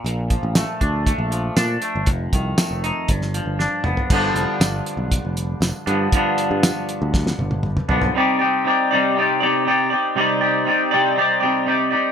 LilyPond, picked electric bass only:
\new Staff \with { instrumentName = "Picked electric bass" } { \clef bass \time 4/4 \key c \dorian \tempo 4 = 119 bes,,8. a,,8 r16 d,8. bes,,8. bes,8 r16 g,,16 | f,,8 c,8 r16 f,,8 r16 g,,8. g,,8 r16 f,,16 r16 | g,,8 f,,16 r16 g,,8 r16 b,,8 f,,8. f,,16 r16 g,8 | r8. g,8 r8 d,8. g,,4 b,,8 |
r1 | r1 | }